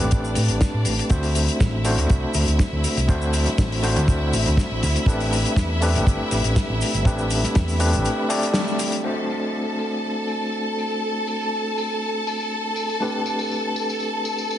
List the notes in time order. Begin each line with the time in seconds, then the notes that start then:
Already playing: A3 C4 D4 G4 B4 D5
0.11 A1, kick, closed hi-hat, cabasa
0.25 cabasa
0.35 A2, open hi-hat, cabasa
0.48 A1, closed hi-hat, cabasa
0.61 kick, snare, closed hi-hat, cabasa
0.74 A2
0.85 A1, open hi-hat, cabasa
0.99 closed hi-hat, cabasa
1.09 D2 A3 C4 D4 E4 F#4 C5 E5, kick, closed hi-hat, cabasa
1.23 open hi-hat, cabasa
1.35 open hi-hat, cabasa
1.48 closed hi-hat, cabasa
1.60 A1, kick, snare, closed hi-hat, cabasa
1.84 A3 C4 D4 F#4 C5, open hi-hat, cabasa
1.98 D2, closed hi-hat, cabasa
2.10 C2, kick, closed hi-hat, cabasa
2.34 D2, open hi-hat, cabasa
2.47 D2, closed hi-hat, cabasa
2.59 kick, snare, closed hi-hat, cabasa
2.72 D2
2.84 open hi-hat, cabasa
2.97 C2, closed hi-hat, cabasa
3.08 D2 A3 C4 D4 F#4 C5, kick, closed hi-hat, cabasa
3.22 cabasa
3.33 open hi-hat, cabasa
3.46 muted fingered electric bass stroke, snare, closed hi-hat, cabasa
3.58 A1, kick, snare, closed hi-hat, cabasa
3.72 open hi-hat
3.82 A3 C4 D4 F#4 C5, open hi-hat, cabasa
3.96 D2, closed hi-hat, cabasa
4.08 D2, kick, closed hi-hat, cabasa
4.33 A1, open hi-hat, cabasa
4.46 D2, closed hi-hat, cabasa
4.57 kick, snare, closed hi-hat, cabasa
4.71 A1
4.83 D2, open hi-hat, cabasa
4.96 closed hi-hat, cabasa
5.06 A1 A3 C4 D4 G4 B4, kick, closed hi-hat, cabasa
5.20 open hi-hat, cabasa
5.33 open hi-hat, cabasa
5.45 closed hi-hat, cabasa
5.56 E2, kick, snare, closed hi-hat, cabasa
5.81 A3 C4 D4 G4 B4, open hi-hat, cabasa
5.95 A1, closed hi-hat, cabasa
6.07 G1, kick, closed hi-hat, cabasa
6.31 A1, open hi-hat, cabasa
6.44 A1, closed hi-hat, cabasa
6.56 kick, snare, closed hi-hat, cabasa
6.69 A1
6.81 open hi-hat, cabasa
6.94 G1, closed hi-hat, cabasa
7.05 A1 A3 C4 D4 G4 B4, kick, closed hi-hat, cabasa
7.18 cabasa
7.31 open hi-hat, cabasa
7.43 muted fingered electric bass stroke, snare, closed hi-hat, cabasa
7.55 E2, kick, snare, closed hi-hat, cabasa
7.68 open hi-hat, cabasa
7.79 A3 C4 D4 G4 B4, open hi-hat, cabasa
7.93 A1, closed hi-hat, cabasa
8.05 closed hi-hat, cabasa
8.29 A3 C4 D4 G4 D5, open hi-hat, cabasa
8.42 closed hi-hat, cabasa
8.54 snare, closed hi-hat, cabasa
8.68 cabasa
8.79 open hi-hat, cabasa
8.92 closed hi-hat, cabasa
9.03 A3 C4 D4 F#4 A4 C5 A5, crash, tambourine
9.30 tambourine
9.42 tambourine
9.54 tambourine
9.79 tambourine
9.91 tambourine
10.04 tambourine
10.28 tambourine
10.41 tambourine
10.53 tambourine
10.79 tambourine
10.92 tambourine
11.04 tambourine
11.27 tambourine
11.41 tambourine
11.54 tambourine
11.78 tambourine
11.90 tambourine
12.02 tambourine
12.27 tambourine
12.40 tambourine
12.52 tambourine
12.76 tambourine
12.90 tambourine
13.00 A3 C4 D4 G4 B4, tambourine
13.26 tambourine
13.39 tambourine
13.51 tambourine
13.76 tambourine
13.89 tambourine
14.00 tambourine
14.25 tambourine
14.38 tambourine
14.51 tambourine